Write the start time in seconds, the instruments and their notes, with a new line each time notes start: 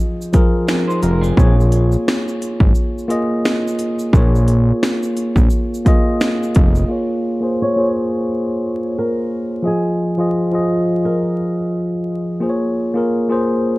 Already playing: tine electric piano F3 F4 G#4 D#5
0.21 shaker
0.33 tine electric piano F3 F4 G#4 A#4, kick, closed hi-hat, shaker
0.68 clean electric guitar C4 G#4, finger snap, snare, shaker
0.88 clean electric guitar D#4 C5, shaker
1.03 analog synth bass F1, clean electric guitar A#4, closed hi-hat, shaker
1.21 clean electric guitar C4 G#4, shaker
1.37 analog synth bass A#1, tine electric piano A#3 F4 G#4 C#5, kick, shaker
1.60 shaker
1.72 closed hi-hat, shaker
1.92 shaker
2.08 finger snap, snare, shaker
2.28 shaker
2.42 closed hi-hat, shaker
2.60 analog synth bass G#1, kick
2.75 shaker
2.98 shaker
3.08 tine electric piano A#3 F4 G#4 D#5, closed hi-hat, shaker
3.45 finger snap, snare, shaker
3.68 shaker
3.79 closed hi-hat, shaker
3.99 shaker
4.13 analog synth bass A#1, tine electric piano A#3 F4 G#4 C#5, kick, shaker
4.35 shaker
4.48 closed hi-hat, shaker
4.83 finger snap, snare, shaker
5.03 shaker
5.17 closed hi-hat, shaker
5.36 analog synth bass A#1, kick, shaker
5.50 shaker
5.74 shaker
5.85 tine electric piano A#3 F4 G#4 D#5, kick, closed hi-hat, shaker
6.21 finger snap, snare, shaker
6.43 shaker
6.55 analog synth bass F1, kick, closed hi-hat, shaker
6.75 shaker
6.88 tine electric piano A#3 F4 G#4 C#5
7.41 tine electric piano A#3 F4 G#4 C5
7.62 nylon-string guitar C#5
7.76 tine electric piano A#3 F4 G#4 C5
7.86 tine electric piano C#5
8.98 nylon-string guitar A#4
9.62 tine electric piano F3 F4 G#4 D#5
9.67 nylon-string guitar G#4
10.17 tine electric piano F3 F4 G#4 D#5
10.52 tine electric piano F3 F4 G#4 D#5
11.05 nylon-string guitar A#4
12.40 tine electric piano A#3 F4 G#4 C5
12.50 tine electric piano C#5
12.94 tine electric piano A#3 F4 G#4 A#4
13.29 tine electric piano A#3 F4 G#4 C5